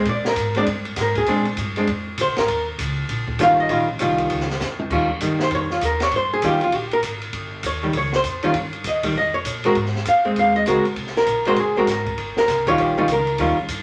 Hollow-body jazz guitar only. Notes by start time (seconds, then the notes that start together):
0.09 D5
0.27 A#4
0.56 G#3 C4 D4 D5
1.01 A#4
1.18 G#4
1.28 G#3 C4 D4
1.77 G#3 C4 D4
2.21 C5
2.39 A#4
3.39 D#3 G3 C#4 F4 F5
3.60 D#5
3.70 D#3 G3 C#4 F4
4.00 D#3 G3 C#4 F4
4.92 D#3 G3 C#4 F4
5.22 D#3 G3
5.43 C5
5.55 C#5
5.72 F4
5.85 A#4
6.03 C#5
6.16 C5
6.34 G#4
6.43 D#3 G3 C#4 F4 G4
6.64 F4
6.76 G4
6.93 A#4
7.66 C#5
7.83 D#3 G3
7.97 C#5
8.16 C5
8.43 D#3 G3 C#4 F4
8.87 D#5
9.04 D#3 G3
9.18 D#5
9.34 C#5
9.65 G#3 C4 F#4 A#4
10.08 F5
10.25 G#3 C4
10.39 F5
10.56 D#5
10.67 G#3 C4 F#4 A#4
11.17 A#4
11.46 G#3 C4 F#4 A#4 C5
11.60 G#4
11.77 G#3 C4 F#4 A#4
11.91 A#4
12.38 A#4
12.67 D#3 G3 C#4 F4 C#5
12.82 G4
12.97 D#3 G3 C#4 F4
13.12 A#4
13.40 D#3 G3 C#4 F4